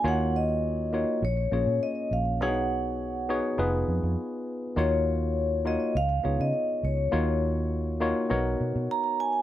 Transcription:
<<
  \new Staff \with { instrumentName = "Vibraphone" } { \time 4/4 \key ees \minor \tempo 4 = 102 ges''8 ees''4. des''4 ees''8 f''8 | fis''2 r2 | des''4. ees''8 f''8. ees''8. des''8~ | des''8 r2 r8 ais''8 gis''8 | }
  \new Staff \with { instrumentName = "Tine electric piano" } { \time 4/4 \key ees \minor <bes ees' f' ges' des''>4. <bes ees' f' ges' des''>8 r8 <bes des' f' aes' des''>4. | <b d' dis' fis' gis' cis''>4. <b dis' fis' gis' cis''>8 <ces' ees' f' aes' ces''>2 | <bes ees' f' ges' des''>4. <bes ees' f' ges' des''>8 r8 <ces' ees' f' aes' des''>4. | <bes ees' f' ges' des''>4. <bes ees' f' ges' des''>8 <b dis' fis' ais' cis''>2 | }
  \new Staff \with { instrumentName = "Fingered electric bass" } { \clef bass \time 4/4 \key ees \minor ees,4.~ ees,16 r16 bes,,8 bes,,16 bes,16 r8 bes,,8 | b,,4.~ b,,16 r16 f,,8 f,16 f,16 r4 | ees,4.~ ees,16 r16 des,8 des,16 des16 r8 des,8 | ees,4.~ ees,16 r16 b,,8 b,16 b,16 r4 | }
>>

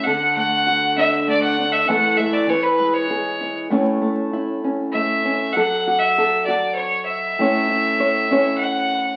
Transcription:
<<
  \new Staff \with { instrumentName = "Fiddle" } { \time 3/4 \key a \major \tempo 4 = 98 fis''8 fis''4 e''8 d''16 fis''8 e''16 | fis''8 e''16 d''16 cis''16 b'8 cis''4 r16 | r2 e''4 | fis''8. e''8. d''8 cis''8 e''8~ |
e''2 fis''4 | }
  \new Staff \with { instrumentName = "Nylon-string guitar" } { \time 3/4 \key a \major << { a'4 fis'8 d'4 d'8 | <a e' a'>4 b'4 gis'8 e'8 | <a cis' e' cis''>4 e'8 cis'4 cis'8 | a'8 fis'8 a'8 <fis' a'>4. |
<a cis' e' cis''>8 e'8 cis''8 <cis' e' cis''>4. | } \\ { d8 a4. a4 | e8 a8 e8 gis4. | a,8 a4. a4 | fis2. |
a,2. | } >> }
>>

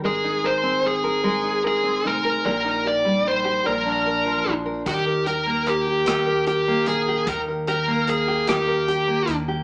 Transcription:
<<
  \new Staff \with { instrumentName = "Lead electric guitar" } { \time 6/8 \key ees \major \tempo 4. = 50 aes'8 c''8 aes'4 aes'8 bes'8 | bes'8 d''8 c''8 bes'4 r8 | g'8 bes'8 g'4 g'8 aes'8 | bes'8 bes'8 aes'8 g'4 r8 | }
  \new Staff \with { instrumentName = "Nylon-string guitar" } { \time 6/8 \key ees \major <aes bes'>16 ees'16 bes'16 c'16 ees'16 bes'16 <aes bes'>16 ees'16 bes'16 c'16 ees'16 bes'16 | <bes, g'>16 ees'16 g'16 g16 ees'16 g'16 <bes, bes'>16 d'16 bes'16 f16 d'16 bes'16 | <ees g'>16 bes'16 g'16 bes16 bes'16 g'16 <ees g'>16 bes'16 g'16 bes16 bes'16 g'16 | <ees g'>16 bes'16 g'16 bes16 bes'16 g'16 <ees g'>16 bes'16 g'16 bes16 bes'16 g'16 | }
  \new Staff \with { instrumentName = "Upright bass" } { \clef bass \time 6/8 \key ees \major aes,,2~ aes,,8 f,,8 | bes,,4. bes,,4 bes,,8 | ees,2~ ees,8 bes,,8 | ees,2~ ees,8 ees,8 | }
  \new DrumStaff \with { instrumentName = "Drums" } \drummode { \time 6/8 r4. r4. | r4. r4. | <hh bd>8 hh8 hh8 <hh ss>8 hh8 hh8 | <hh bd>8 hh8 hh8 <hh ss>8 hh8 hh8 | }
>>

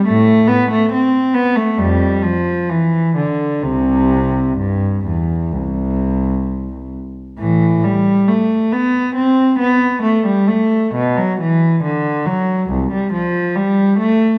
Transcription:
\new Staff \with { instrumentName = "Cello" } { \clef bass \time 4/4 \key c \major \tempo 4 = 68 <a, a>8 b16 a16 c'8 b16 a16 <f, g>8 f8 e8 d8 | <c, c>4 g,8 e,8 c,4. r8 | \key a \minor <a, e>8 g8 a8 b8 c'8 b8 a16 g16 a8 | b,16 fis16 e8 d8 fis8 c,16 g16 f8 g8 a8 | }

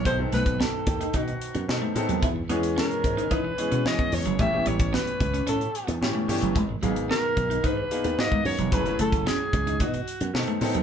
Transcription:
<<
  \new Staff \with { instrumentName = "Alto saxophone" } { \time 4/4 \key b \major \tempo 4 = 111 c''8 b'8 a'4 fis'4 r4 | r4 ais'4 b'4 dis''8 cis''8 | e''8 cis''8 b'4 a'4 r4 | r4 ais'4 b'4 dis''8 cis''8 |
b'8 a'8 gis'4 fis'4 r4 | }
  \new Staff \with { instrumentName = "Clean electric guitar" } { \time 4/4 \key b \major b16 r16 a16 r16 b16 r8 dis'16 dis'16 r8 b16 r16 a16 r16 fis16 | e'16 r16 b16 r16 cis'16 r8 dis'16 dis'16 r8 cis'16 r16 b16 r16 fis16 | a16 r16 g16 r16 b16 r8 cis'16 cis'16 r8 b16 r16 a16 r16 fis16 | gis16 r16 fis16 r16 b16 r8 dis'16 dis'16 r8 b16 r16 gis16 r16 fis16 |
fis16 r16 a16 r16 cis'16 r8 dis'16 dis'16 r8 b16 r16 a16 r16 fis16 | }
  \new Staff \with { instrumentName = "Grand piano" } { \time 4/4 \key b \major <fis b c' dis' a'>16 <fis b c' dis' a'>4~ <fis b c' dis' a'>16 r4. <fis b c' dis' a'>16 r16 <fis b c' dis' a'>8 | r8 <e gis b cis' gis'>4~ <e gis b cis' gis'>16 r8. <e gis b cis' gis'>16 r16 <e gis b cis' gis'>8. r16 | <e a b cis' g'>16 <e a b cis' g'>4~ <e a b cis' g'>16 r4. <e a b cis' g'>16 r16 <e a b cis' g'>8 | r8 <fis ais b dis' gis'>4~ <fis ais b dis' gis'>16 r8. <fis ais b dis' gis'>16 r16 <fis ais b dis' fis'>8. r16 |
<fis a cis' e' gis'>16 <fis a cis' e' fis' gis'>4~ <fis a cis' e' fis' gis'>16 r4. <fis b c' dis' a'>16 r16 <fis b c' dis' a'>8 | }
  \new Staff \with { instrumentName = "Slap bass" } { \clef bass \time 4/4 \key b \major b,,8 b,,8. r16 dis,8 b,8 r16 fis,16 b,16 r16 a,16 dis,16 | e,8 e,8. r16 gis,8 e8 r16 b,16 e16 r16 e,16 fis,,16 | a,,8 a,,8. r16 cis,8 a,8 r16 e,16 a,16 r16 g,16 fis,,16 | gis,,8 gis,,8. r16 b,,8 gis,8 r16 dis,16 gis,16 r16 fis,16 e,,16 |
fis,,8 fis,,8. r16 cis,8 b,8 r16 fis,16 b,16 r16 a,16 dis,16 | }
  \new DrumStaff \with { instrumentName = "Drums" } \drummode { \time 4/4 <hh bd>8 <hh sn>16 <hh bd>16 sn8 <hh bd>16 hh16 <hh bd>16 hh16 hh16 hh16 sn8 hh16 hh16 | <hh bd>8 hh16 hh16 sn16 hh16 <hh bd>16 hh16 <hh bd>8 hh16 hh16 sn16 <hh bd>16 hho16 hh16 | <hh bd>8 hh16 <hh bd>16 sn16 hh16 <hh bd>16 hh16 hh16 hh16 hh16 hh16 sn8 hho16 hh16 | <hh bd>8 hh16 hh16 sn8 <hh bd>16 hh16 <hh bd>8 hh16 hh16 sn16 bd16 hho16 hh16 |
<hh bd>16 hh16 hh16 <hh bd>16 sn8 <hh bd>16 hh16 <hh bd>16 hh16 hh16 hh16 sn16 hh16 hho16 hh16 | }
>>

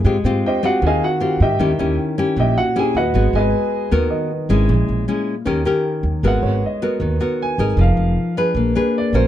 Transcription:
<<
  \new Staff \with { instrumentName = "Grand piano" } { \time 4/4 \key gis \minor \tempo 4 = 155 r4 <g' bis' dis'' g''>8 <fis' fis''>8 <gis' dis'' eis'' gis''>8 <fis' fis''>4 <g' dis'' e'' g''>8~ | <g' dis'' e'' g''>4 r4 <g' dis'' e'' g''>8 <fis' fis''>8 <gis' gis''>8 <fis' b' dis'' fis''>8~ | <fis' b' dis'' fis''>8 <gis' b' dis'' gis''>4. r2 | r1 |
fis''4 dis''4. r8 gis''4 | f''4. r4. d''8 bis'8 | }
  \new Staff \with { instrumentName = "Grand piano" } { \time 4/4 \key gis \minor r1 | r1 | r2 r8 dis''4.~ | dis''8 r2. r8 |
r8 cis''2 r4. | r1 | }
  \new Staff \with { instrumentName = "Nylon-string guitar" } { \time 4/4 \key gis \minor << { <bis eis' g'>8 <bis eis' g'>4 <bis eis' g'>4. <bis eis' g'>8 r8 | <cis' e' g'>8 <cis' e' g'>4 <cis' e' g'>4. <cis' e' g'>8 r8 | <b fis'>2 <b fis' ais'>4 r8 <gis cis' e'>8~ | <gis cis' e'>4 <gis cis' e'>8 r8 <cis' g' ais'>8 <cis' g' ais'>4. |
<b fis' ais'>4 r8 <b fis' ais'>4 <b fis' ais'>4 <dis' gis' ais'>8~ | <dis' gis' ais'>4. <d' aes' b'>4 <d' gis' b'>4 <cis' fis' ais'>8 | } \\ { gis2 dis2 | dis2 ais,2 | gis2 dis2 | ais,2 dis2 |
gis2 dis2 | f2 ais2 | } >> }
  \new Staff \with { instrumentName = "Upright bass" } { \clef bass \time 4/4 \key gis \minor gis,8 gis,8 r4 dis,8 r4 gis,8 | dis,8 dis,8 r4 ais,,8 r4 dis,8 | gis,,8 gis,,8 r4 dis,8 r4 gis,,8 | ais,,8 ais,,8 r4 dis,8 r4 dis,8 |
gis,,8 gis,,8 r4 dis,8 r4 gis,,8 | f,,8 f,,8 r4 ais,,8 r4 ais,,8 | }
>>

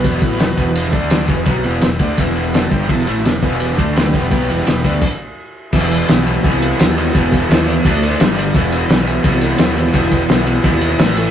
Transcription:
<<
  \new Staff \with { instrumentName = "Transistor combo organ" } { \time 4/4 \key e \minor \tempo 4 = 170 <e' b' g''>4 <e' b' g''>4 <e' g' b'>8 <d' a' d''>4 <e' g' b'>8~ | <e' g' b'>4 <e' g' b'>4 <e' g' b'>4 <e' g' d''>4 | <e' g' b'>4 <e' g' b'>4 <e' g' b'>8 <d' a' d''>4 <e' g' b'>8~ | <e' g' b'>4 <e' g' b'>4 r2 |
<e' g' b'>4 <e' g' b'>4 <e' g' b'>4 <e' g' b'>4 | <e' g' b'>4 <e' g' b'>4 <d' a' d''>4 <d' g' d''>4 | <g' b' e''>4 <g' b' e''>4 <g' b' e''>4 <g' b' e''>4 | <g' b' g''>4 <g' b' e''>4 <g' b' e''>4 <e' a' e''>4 | }
  \new Staff \with { instrumentName = "Transistor combo organ" } { \time 4/4 \key e \minor <fis b>2 r2 | r4. d''8 e''8 b'8 a'8 g'8 | a'8 e'8 d'8 b8 d'8 a8 <g b>4~ | <g b>2 r2 |
r1 | r1 | r1 | r1 | }
  \new Staff \with { instrumentName = "Overdriven electric guitar" } { \clef bass \time 4/4 \key e \minor <e, b, e>8 <a, e a>8 <e, b,>8 <e, b, e>4 <d a d'>4 <e, b, e>8 | <b, fis b>8 <e, b, e>8 <e, b,>8 <d a d'>8 <e, b, e>4. <g, d g>8 | <e, b, e>8 <a, e a>8 <e, b,>8 <e, b, e>4 <d a d'>4 <e, b, e>8 | <b, fis b>8 <e, b, e>8 <e, b,>8 <d a d'>8 r2 |
<e, b, e>4 <e, b, e>8 <e, b, e>8 <e, b, e>4 <e, b, e>8 <e, b, e>8 | <e, b, e>4 <e, b, e>8 <e, b, e>8 <d a d'>4 <g, d g>8 <g, d g>8 | <e, b, e>4 <e, b, e>8 <e, b, e>8 <e, b, e>4 <e, b, e>8 <e, b, e>8 | <e, b, e>4 <e, b, e>8 <e, b, e>8 <e, b, e>4 <a, e a>8 <a, e a>8 | }
  \new Staff \with { instrumentName = "Fingered electric bass" } { \clef bass \time 4/4 \key e \minor e,,8 a,,8 e,,8 e,,4 d,4 e,,8 | b,,8 e,,8 e,,8 d,8 e,,4. g,,8 | e,,8 a,,8 e,,8 e,,4 d,4 e,,8 | b,,8 e,,8 e,,8 d,8 r2 |
e,,4 b,,4 c,4 dis,4 | e,,4 dis,4 d,4 g,,4 | e,,4 b,,4 c,4 dis,4 | e,,4 b,,4 dis,4 a,,4 | }
  \new DrumStaff \with { instrumentName = "Drums" } \drummode { \time 4/4 <bd cymr>8 <bd cymr>8 <cymr sn>8 <bd cymr>8 cymr16 sn16 <bd cymr>8 <cymr sn>8 <bd cymr>8 | <bd cymr>8 cymr8 <cymr sn>8 <bd cymr>8 <bd cymr>16 sn16 cymr8 <cymr sn>8 <bd cymr>8 | <bd cymr>8 cymr16 sn16 <cymr sn>8 <bd cymr>8 cymr16 sn16 <bd cymr>8 <cymr sn>8 <bd cymr>8 | <bd cymr>8 cymr16 sn16 <cymr sn>8 <bd cymr>8 <cymc bd>4 r4 |
<cymc bd>16 sn16 cymr8 <cymr sn>8 cymr8 <bd cymr>8 cymr8 <cymr sn>8 cymr8 | <bd cymr>8 <bd cymr>8 <cymr sn>8 cymr8 <bd cymr>8 cymr8 <cymr sn>8 cymr8 | <bd cymr>8 cymr8 <cymr sn>8 cymr8 <bd cymr>8 cymr8 <cymr sn>8 cymr8 | <bd cymr>16 sn16 <bd cymr>8 <cymr sn>8 cymr8 <bd cymr>8 cymr8 <cymr sn>8 cymr8 | }
>>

